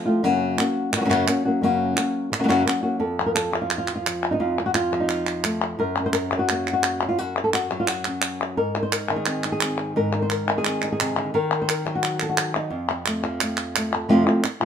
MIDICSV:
0, 0, Header, 1, 4, 480
1, 0, Start_track
1, 0, Tempo, 346420
1, 324, Time_signature, 4, 2, 24, 8
1, 20299, End_track
2, 0, Start_track
2, 0, Title_t, "Nylon-string guitar"
2, 0, Program_c, 0, 24
2, 76, Note_on_c, 0, 65, 56
2, 89, Note_on_c, 0, 60, 51
2, 99, Note_on_c, 0, 57, 52
2, 108, Note_on_c, 0, 53, 40
2, 310, Note_off_c, 0, 65, 0
2, 317, Note_off_c, 0, 60, 0
2, 319, Note_on_c, 0, 42, 85
2, 322, Note_off_c, 0, 57, 0
2, 322, Note_on_c, 0, 49, 77
2, 324, Note_off_c, 0, 53, 0
2, 329, Note_on_c, 0, 54, 92
2, 336, Note_on_c, 0, 58, 87
2, 341, Note_on_c, 0, 61, 89
2, 346, Note_on_c, 0, 66, 82
2, 790, Note_off_c, 0, 66, 0
2, 792, Note_off_c, 0, 42, 0
2, 793, Note_off_c, 0, 49, 0
2, 797, Note_off_c, 0, 54, 0
2, 800, Note_off_c, 0, 58, 0
2, 802, Note_off_c, 0, 61, 0
2, 806, Note_on_c, 0, 66, 54
2, 822, Note_on_c, 0, 61, 51
2, 831, Note_on_c, 0, 58, 52
2, 835, Note_on_c, 0, 54, 45
2, 1268, Note_off_c, 0, 58, 0
2, 1271, Note_off_c, 0, 54, 0
2, 1275, Note_off_c, 0, 66, 0
2, 1283, Note_off_c, 0, 61, 0
2, 1325, Note_on_c, 0, 49, 56
2, 1340, Note_on_c, 0, 58, 58
2, 1343, Note_on_c, 0, 61, 61
2, 1347, Note_on_c, 0, 66, 59
2, 1368, Note_off_c, 0, 49, 0
2, 1385, Note_on_c, 0, 49, 66
2, 1387, Note_off_c, 0, 58, 0
2, 1387, Note_off_c, 0, 61, 0
2, 1395, Note_on_c, 0, 54, 67
2, 1396, Note_off_c, 0, 66, 0
2, 1403, Note_on_c, 0, 58, 66
2, 1404, Note_on_c, 0, 61, 74
2, 1413, Note_on_c, 0, 66, 79
2, 1437, Note_off_c, 0, 49, 0
2, 1444, Note_off_c, 0, 58, 0
2, 1444, Note_off_c, 0, 61, 0
2, 1445, Note_off_c, 0, 54, 0
2, 1447, Note_off_c, 0, 66, 0
2, 1453, Note_on_c, 0, 49, 75
2, 1460, Note_on_c, 0, 61, 84
2, 1461, Note_on_c, 0, 54, 76
2, 1461, Note_on_c, 0, 58, 77
2, 1464, Note_on_c, 0, 66, 80
2, 1499, Note_off_c, 0, 54, 0
2, 1503, Note_off_c, 0, 49, 0
2, 1511, Note_off_c, 0, 66, 0
2, 1512, Note_on_c, 0, 42, 89
2, 1514, Note_off_c, 0, 61, 0
2, 1516, Note_off_c, 0, 58, 0
2, 1516, Note_on_c, 0, 54, 92
2, 1519, Note_on_c, 0, 49, 82
2, 1528, Note_on_c, 0, 66, 93
2, 1531, Note_on_c, 0, 61, 94
2, 1533, Note_on_c, 0, 58, 93
2, 1743, Note_off_c, 0, 54, 0
2, 1748, Note_off_c, 0, 42, 0
2, 1752, Note_off_c, 0, 49, 0
2, 1752, Note_off_c, 0, 58, 0
2, 1756, Note_off_c, 0, 66, 0
2, 1758, Note_off_c, 0, 61, 0
2, 1759, Note_on_c, 0, 54, 54
2, 1768, Note_on_c, 0, 58, 54
2, 1784, Note_on_c, 0, 61, 64
2, 1793, Note_on_c, 0, 66, 60
2, 1992, Note_off_c, 0, 54, 0
2, 1995, Note_off_c, 0, 66, 0
2, 1997, Note_off_c, 0, 58, 0
2, 1999, Note_off_c, 0, 61, 0
2, 2011, Note_on_c, 0, 66, 49
2, 2016, Note_on_c, 0, 61, 52
2, 2037, Note_on_c, 0, 54, 50
2, 2037, Note_on_c, 0, 58, 48
2, 2238, Note_off_c, 0, 66, 0
2, 2239, Note_on_c, 0, 42, 76
2, 2241, Note_off_c, 0, 61, 0
2, 2243, Note_off_c, 0, 54, 0
2, 2246, Note_off_c, 0, 58, 0
2, 2255, Note_on_c, 0, 49, 73
2, 2260, Note_on_c, 0, 54, 77
2, 2262, Note_on_c, 0, 58, 86
2, 2276, Note_on_c, 0, 61, 72
2, 2277, Note_on_c, 0, 66, 80
2, 2699, Note_off_c, 0, 66, 0
2, 2706, Note_off_c, 0, 61, 0
2, 2713, Note_off_c, 0, 42, 0
2, 2715, Note_on_c, 0, 66, 55
2, 2716, Note_off_c, 0, 58, 0
2, 2720, Note_off_c, 0, 49, 0
2, 2723, Note_off_c, 0, 54, 0
2, 2723, Note_on_c, 0, 61, 46
2, 2732, Note_on_c, 0, 58, 52
2, 2747, Note_on_c, 0, 54, 41
2, 3191, Note_off_c, 0, 66, 0
2, 3195, Note_off_c, 0, 61, 0
2, 3196, Note_off_c, 0, 54, 0
2, 3200, Note_off_c, 0, 58, 0
2, 3313, Note_on_c, 0, 54, 57
2, 3314, Note_on_c, 0, 49, 52
2, 3319, Note_on_c, 0, 58, 49
2, 3327, Note_on_c, 0, 66, 57
2, 3329, Note_on_c, 0, 61, 57
2, 3357, Note_off_c, 0, 54, 0
2, 3358, Note_off_c, 0, 49, 0
2, 3363, Note_off_c, 0, 61, 0
2, 3369, Note_off_c, 0, 58, 0
2, 3373, Note_on_c, 0, 54, 74
2, 3375, Note_on_c, 0, 49, 65
2, 3377, Note_off_c, 0, 66, 0
2, 3379, Note_on_c, 0, 61, 74
2, 3386, Note_on_c, 0, 58, 62
2, 3394, Note_on_c, 0, 66, 75
2, 3425, Note_off_c, 0, 58, 0
2, 3426, Note_off_c, 0, 49, 0
2, 3430, Note_off_c, 0, 54, 0
2, 3432, Note_off_c, 0, 61, 0
2, 3435, Note_off_c, 0, 66, 0
2, 3435, Note_on_c, 0, 42, 81
2, 3442, Note_on_c, 0, 58, 94
2, 3443, Note_on_c, 0, 49, 80
2, 3447, Note_on_c, 0, 54, 85
2, 3448, Note_on_c, 0, 61, 85
2, 3451, Note_on_c, 0, 66, 93
2, 3660, Note_off_c, 0, 54, 0
2, 3671, Note_off_c, 0, 42, 0
2, 3671, Note_off_c, 0, 58, 0
2, 3675, Note_off_c, 0, 49, 0
2, 3677, Note_on_c, 0, 54, 56
2, 3678, Note_off_c, 0, 61, 0
2, 3680, Note_off_c, 0, 66, 0
2, 3687, Note_on_c, 0, 58, 54
2, 3700, Note_on_c, 0, 61, 61
2, 3709, Note_on_c, 0, 66, 60
2, 3901, Note_off_c, 0, 66, 0
2, 3902, Note_off_c, 0, 61, 0
2, 3913, Note_off_c, 0, 54, 0
2, 3918, Note_off_c, 0, 58, 0
2, 3918, Note_on_c, 0, 66, 57
2, 3919, Note_on_c, 0, 61, 47
2, 3934, Note_on_c, 0, 58, 50
2, 3939, Note_on_c, 0, 54, 42
2, 4151, Note_off_c, 0, 66, 0
2, 4151, Note_on_c, 0, 41, 71
2, 4154, Note_off_c, 0, 61, 0
2, 4157, Note_on_c, 0, 69, 99
2, 4162, Note_off_c, 0, 58, 0
2, 4164, Note_off_c, 0, 54, 0
2, 4430, Note_on_c, 0, 53, 45
2, 4516, Note_off_c, 0, 69, 0
2, 4521, Note_on_c, 0, 70, 83
2, 4638, Note_off_c, 0, 70, 0
2, 4643, Note_on_c, 0, 69, 100
2, 4876, Note_off_c, 0, 53, 0
2, 4882, Note_on_c, 0, 53, 64
2, 5005, Note_off_c, 0, 69, 0
2, 5011, Note_on_c, 0, 65, 75
2, 5222, Note_off_c, 0, 65, 0
2, 5238, Note_on_c, 0, 65, 83
2, 5364, Note_off_c, 0, 53, 0
2, 5380, Note_on_c, 0, 53, 47
2, 5465, Note_off_c, 0, 65, 0
2, 5481, Note_on_c, 0, 65, 81
2, 5617, Note_off_c, 0, 53, 0
2, 5631, Note_on_c, 0, 53, 49
2, 5970, Note_on_c, 0, 63, 86
2, 5986, Note_on_c, 0, 61, 71
2, 5998, Note_off_c, 0, 63, 0
2, 6006, Note_off_c, 0, 61, 0
2, 6012, Note_on_c, 0, 63, 81
2, 6074, Note_off_c, 0, 53, 0
2, 6077, Note_off_c, 0, 65, 0
2, 6080, Note_off_c, 0, 41, 0
2, 6095, Note_on_c, 0, 41, 73
2, 6099, Note_on_c, 0, 65, 93
2, 6323, Note_off_c, 0, 63, 0
2, 6361, Note_on_c, 0, 60, 50
2, 6449, Note_off_c, 0, 65, 0
2, 6455, Note_on_c, 0, 66, 93
2, 6570, Note_off_c, 0, 66, 0
2, 6575, Note_on_c, 0, 65, 95
2, 6819, Note_on_c, 0, 53, 65
2, 6924, Note_off_c, 0, 60, 0
2, 6930, Note_on_c, 0, 63, 80
2, 7045, Note_off_c, 0, 65, 0
2, 7062, Note_on_c, 0, 65, 86
2, 7535, Note_off_c, 0, 63, 0
2, 7546, Note_on_c, 0, 57, 55
2, 7993, Note_off_c, 0, 53, 0
2, 7995, Note_off_c, 0, 57, 0
2, 8011, Note_off_c, 0, 41, 0
2, 8017, Note_on_c, 0, 42, 69
2, 8022, Note_off_c, 0, 65, 0
2, 8030, Note_on_c, 0, 70, 105
2, 8286, Note_on_c, 0, 61, 45
2, 8389, Note_off_c, 0, 70, 0
2, 8395, Note_on_c, 0, 72, 99
2, 8487, Note_off_c, 0, 72, 0
2, 8493, Note_on_c, 0, 70, 110
2, 8756, Note_on_c, 0, 54, 61
2, 8848, Note_off_c, 0, 70, 0
2, 8853, Note_on_c, 0, 66, 88
2, 9017, Note_on_c, 0, 58, 41
2, 9312, Note_off_c, 0, 66, 0
2, 9329, Note_on_c, 0, 66, 92
2, 9718, Note_off_c, 0, 61, 0
2, 9740, Note_on_c, 0, 61, 51
2, 9814, Note_off_c, 0, 66, 0
2, 9819, Note_on_c, 0, 65, 91
2, 9916, Note_off_c, 0, 42, 0
2, 9924, Note_off_c, 0, 54, 0
2, 9934, Note_off_c, 0, 58, 0
2, 9934, Note_off_c, 0, 61, 0
2, 9955, Note_off_c, 0, 65, 0
2, 9955, Note_on_c, 0, 66, 98
2, 9978, Note_on_c, 0, 42, 65
2, 10302, Note_off_c, 0, 66, 0
2, 10307, Note_on_c, 0, 69, 85
2, 10427, Note_off_c, 0, 69, 0
2, 10440, Note_on_c, 0, 66, 101
2, 10681, Note_on_c, 0, 54, 62
2, 10794, Note_off_c, 0, 66, 0
2, 10804, Note_on_c, 0, 65, 84
2, 10927, Note_off_c, 0, 65, 0
2, 10927, Note_on_c, 0, 66, 94
2, 11185, Note_on_c, 0, 61, 47
2, 11848, Note_off_c, 0, 54, 0
2, 11857, Note_off_c, 0, 42, 0
2, 11859, Note_off_c, 0, 61, 0
2, 11874, Note_off_c, 0, 66, 0
2, 11879, Note_on_c, 0, 44, 67
2, 11879, Note_on_c, 0, 70, 99
2, 12136, Note_on_c, 0, 63, 44
2, 12225, Note_off_c, 0, 70, 0
2, 12230, Note_on_c, 0, 72, 89
2, 12357, Note_off_c, 0, 72, 0
2, 12357, Note_on_c, 0, 70, 111
2, 12610, Note_on_c, 0, 51, 64
2, 12690, Note_off_c, 0, 70, 0
2, 12695, Note_on_c, 0, 68, 98
2, 12846, Note_on_c, 0, 60, 46
2, 13089, Note_off_c, 0, 63, 0
2, 13095, Note_on_c, 0, 63, 40
2, 13177, Note_off_c, 0, 68, 0
2, 13194, Note_on_c, 0, 68, 90
2, 13319, Note_off_c, 0, 60, 0
2, 13343, Note_on_c, 0, 60, 51
2, 13767, Note_off_c, 0, 44, 0
2, 13778, Note_off_c, 0, 60, 0
2, 13792, Note_off_c, 0, 68, 0
2, 13801, Note_on_c, 0, 44, 80
2, 13810, Note_on_c, 0, 70, 110
2, 14055, Note_off_c, 0, 63, 0
2, 14061, Note_on_c, 0, 63, 47
2, 14158, Note_off_c, 0, 70, 0
2, 14165, Note_on_c, 0, 72, 86
2, 14286, Note_off_c, 0, 72, 0
2, 14286, Note_on_c, 0, 70, 107
2, 14510, Note_off_c, 0, 51, 0
2, 14527, Note_on_c, 0, 51, 69
2, 14638, Note_off_c, 0, 70, 0
2, 14658, Note_on_c, 0, 68, 91
2, 14779, Note_on_c, 0, 60, 48
2, 14998, Note_off_c, 0, 63, 0
2, 15015, Note_on_c, 0, 63, 44
2, 15119, Note_off_c, 0, 68, 0
2, 15136, Note_on_c, 0, 68, 81
2, 15255, Note_on_c, 0, 48, 68
2, 15468, Note_off_c, 0, 48, 0
2, 15474, Note_on_c, 0, 50, 65
2, 15684, Note_off_c, 0, 44, 0
2, 15691, Note_off_c, 0, 63, 0
2, 15693, Note_off_c, 0, 60, 0
2, 15697, Note_off_c, 0, 51, 0
2, 15706, Note_off_c, 0, 50, 0
2, 15711, Note_on_c, 0, 51, 84
2, 15717, Note_off_c, 0, 68, 0
2, 15722, Note_on_c, 0, 70, 95
2, 16071, Note_off_c, 0, 70, 0
2, 16094, Note_on_c, 0, 72, 90
2, 16203, Note_off_c, 0, 72, 0
2, 16203, Note_on_c, 0, 70, 96
2, 16423, Note_on_c, 0, 54, 69
2, 16563, Note_on_c, 0, 66, 92
2, 16648, Note_off_c, 0, 54, 0
2, 16664, Note_on_c, 0, 54, 48
2, 16932, Note_off_c, 0, 70, 0
2, 16937, Note_on_c, 0, 69, 70
2, 17018, Note_off_c, 0, 66, 0
2, 17035, Note_on_c, 0, 66, 81
2, 17126, Note_off_c, 0, 54, 0
2, 17143, Note_on_c, 0, 54, 51
2, 17387, Note_off_c, 0, 66, 0
2, 17404, Note_on_c, 0, 63, 78
2, 17502, Note_off_c, 0, 69, 0
2, 17591, Note_off_c, 0, 54, 0
2, 17594, Note_off_c, 0, 51, 0
2, 17603, Note_on_c, 0, 41, 73
2, 17631, Note_off_c, 0, 63, 0
2, 17641, Note_on_c, 0, 65, 83
2, 17864, Note_on_c, 0, 60, 44
2, 18111, Note_on_c, 0, 57, 46
2, 18339, Note_on_c, 0, 53, 60
2, 18580, Note_off_c, 0, 57, 0
2, 18600, Note_on_c, 0, 57, 47
2, 19063, Note_off_c, 0, 57, 0
2, 19084, Note_on_c, 0, 57, 49
2, 19299, Note_off_c, 0, 65, 0
2, 19316, Note_on_c, 0, 69, 50
2, 19500, Note_off_c, 0, 53, 0
2, 19502, Note_off_c, 0, 41, 0
2, 19512, Note_off_c, 0, 69, 0
2, 19515, Note_off_c, 0, 57, 0
2, 19519, Note_off_c, 0, 60, 0
2, 19519, Note_on_c, 0, 41, 87
2, 19521, Note_on_c, 0, 48, 83
2, 19525, Note_on_c, 0, 53, 84
2, 19535, Note_on_c, 0, 57, 95
2, 19536, Note_on_c, 0, 60, 95
2, 19543, Note_on_c, 0, 65, 89
2, 19736, Note_off_c, 0, 65, 0
2, 19743, Note_off_c, 0, 60, 0
2, 19751, Note_off_c, 0, 41, 0
2, 19752, Note_off_c, 0, 48, 0
2, 19753, Note_on_c, 0, 65, 59
2, 19754, Note_off_c, 0, 53, 0
2, 19760, Note_off_c, 0, 57, 0
2, 19760, Note_on_c, 0, 60, 58
2, 19774, Note_on_c, 0, 53, 50
2, 19778, Note_on_c, 0, 57, 52
2, 19987, Note_off_c, 0, 65, 0
2, 19991, Note_off_c, 0, 60, 0
2, 19994, Note_off_c, 0, 57, 0
2, 19998, Note_off_c, 0, 53, 0
2, 20233, Note_on_c, 0, 65, 54
2, 20248, Note_on_c, 0, 60, 50
2, 20299, Note_off_c, 0, 60, 0
2, 20299, Note_off_c, 0, 65, 0
2, 20299, End_track
3, 0, Start_track
3, 0, Title_t, "Muted nylon-string guitar strokes"
3, 1282, Note_on_c, 9, 29, 74
3, 1420, Note_off_c, 9, 29, 0
3, 3211, Note_on_c, 9, 29, 68
3, 3350, Note_off_c, 9, 29, 0
3, 20005, Note_on_c, 9, 29, 67
3, 20144, Note_off_c, 9, 29, 0
3, 20299, End_track
4, 0, Start_track
4, 0, Title_t, "Drums"
4, 813, Note_on_c, 9, 39, 85
4, 951, Note_off_c, 9, 39, 0
4, 1293, Note_on_c, 9, 39, 81
4, 1431, Note_off_c, 9, 39, 0
4, 1545, Note_on_c, 9, 39, 62
4, 1683, Note_off_c, 9, 39, 0
4, 1766, Note_on_c, 9, 39, 86
4, 1904, Note_off_c, 9, 39, 0
4, 2732, Note_on_c, 9, 39, 83
4, 2870, Note_off_c, 9, 39, 0
4, 3228, Note_on_c, 9, 39, 74
4, 3367, Note_off_c, 9, 39, 0
4, 3471, Note_on_c, 9, 39, 56
4, 3609, Note_off_c, 9, 39, 0
4, 3712, Note_on_c, 9, 39, 87
4, 3851, Note_off_c, 9, 39, 0
4, 4657, Note_on_c, 9, 39, 81
4, 4796, Note_off_c, 9, 39, 0
4, 5134, Note_on_c, 9, 39, 79
4, 5272, Note_off_c, 9, 39, 0
4, 5372, Note_on_c, 9, 39, 66
4, 5511, Note_off_c, 9, 39, 0
4, 5628, Note_on_c, 9, 39, 87
4, 5767, Note_off_c, 9, 39, 0
4, 5866, Note_on_c, 9, 39, 44
4, 6004, Note_off_c, 9, 39, 0
4, 6577, Note_on_c, 9, 39, 83
4, 6716, Note_off_c, 9, 39, 0
4, 7055, Note_on_c, 9, 39, 82
4, 7194, Note_off_c, 9, 39, 0
4, 7299, Note_on_c, 9, 39, 63
4, 7438, Note_off_c, 9, 39, 0
4, 7534, Note_on_c, 9, 39, 85
4, 7673, Note_off_c, 9, 39, 0
4, 7784, Note_on_c, 9, 39, 48
4, 7923, Note_off_c, 9, 39, 0
4, 8500, Note_on_c, 9, 39, 95
4, 8639, Note_off_c, 9, 39, 0
4, 8993, Note_on_c, 9, 39, 82
4, 9132, Note_off_c, 9, 39, 0
4, 9246, Note_on_c, 9, 39, 63
4, 9384, Note_off_c, 9, 39, 0
4, 9470, Note_on_c, 9, 39, 90
4, 9609, Note_off_c, 9, 39, 0
4, 10443, Note_on_c, 9, 39, 86
4, 10581, Note_off_c, 9, 39, 0
4, 10915, Note_on_c, 9, 39, 82
4, 11053, Note_off_c, 9, 39, 0
4, 11150, Note_on_c, 9, 39, 71
4, 11288, Note_off_c, 9, 39, 0
4, 11388, Note_on_c, 9, 39, 90
4, 11527, Note_off_c, 9, 39, 0
4, 12361, Note_on_c, 9, 39, 92
4, 12500, Note_off_c, 9, 39, 0
4, 12829, Note_on_c, 9, 39, 77
4, 12968, Note_off_c, 9, 39, 0
4, 13076, Note_on_c, 9, 39, 67
4, 13215, Note_off_c, 9, 39, 0
4, 13312, Note_on_c, 9, 39, 99
4, 13451, Note_off_c, 9, 39, 0
4, 14275, Note_on_c, 9, 39, 82
4, 14413, Note_off_c, 9, 39, 0
4, 14754, Note_on_c, 9, 39, 83
4, 14892, Note_off_c, 9, 39, 0
4, 14991, Note_on_c, 9, 39, 68
4, 15129, Note_off_c, 9, 39, 0
4, 15239, Note_on_c, 9, 39, 94
4, 15378, Note_off_c, 9, 39, 0
4, 16193, Note_on_c, 9, 39, 88
4, 16332, Note_off_c, 9, 39, 0
4, 16440, Note_on_c, 9, 39, 46
4, 16579, Note_off_c, 9, 39, 0
4, 16673, Note_on_c, 9, 39, 80
4, 16811, Note_off_c, 9, 39, 0
4, 16898, Note_on_c, 9, 39, 72
4, 17036, Note_off_c, 9, 39, 0
4, 17149, Note_on_c, 9, 39, 103
4, 17287, Note_off_c, 9, 39, 0
4, 17860, Note_on_c, 9, 39, 51
4, 17999, Note_off_c, 9, 39, 0
4, 18095, Note_on_c, 9, 39, 88
4, 18233, Note_off_c, 9, 39, 0
4, 18571, Note_on_c, 9, 39, 91
4, 18709, Note_off_c, 9, 39, 0
4, 18806, Note_on_c, 9, 39, 74
4, 18945, Note_off_c, 9, 39, 0
4, 19059, Note_on_c, 9, 39, 92
4, 19197, Note_off_c, 9, 39, 0
4, 20009, Note_on_c, 9, 39, 94
4, 20147, Note_off_c, 9, 39, 0
4, 20299, End_track
0, 0, End_of_file